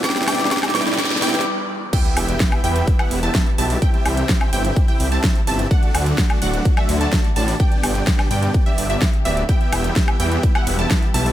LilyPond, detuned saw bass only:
\new Staff \with { instrumentName = "Detuned saw bass" } { \clef bass \time 4/4 \key e \minor \tempo 4 = 127 r1 | r8 e,,8 r8 e,8 r8 e,,8 r8 b,,8 | r8 c,8 r8 g,,8 r8 c,8 r8 g,,8 | r8 d,8 r8 d,,8 r8 d,8 r8 a,,8 |
r8 g,,8 r8 g,8 r8 g,,8 r8 d,,8 | r8 e,,8 r8 e,8 r8 e,,8 r8 b,,8 | }